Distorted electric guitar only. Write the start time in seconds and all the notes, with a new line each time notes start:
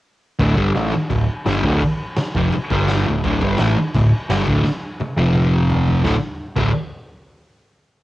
0.39 D2 A2 D3
0.55 G2 D3 G3
0.75 A2 E3 A3
0.93 muted distorted electric guitar stroke
1.10 D2 A2
1.46 G2 D3 G3
1.64 D2 A2 D3
1.83 muted distorted electric guitar stroke
2.18 muted distorted electric guitar stroke
2.37 F2 C3 F3
2.55 muted distorted electric guitar stroke
2.71 G2 D3 G3
3.07 D2 A2
3.24 D2 A2 D3
3.42 G2 D3 G3
3.59 A2 E3 A3
3.77 muted distorted electric guitar stroke
3.95 D2 A2
4.30 G2 D3 G3
4.47 D2 A2 D3
4.65 muted distorted electric guitar stroke
5.01 muted distorted electric guitar stroke
5.18 F2 C3 F3
6.04 D2 A2 D3
6.56 D2 A2 D3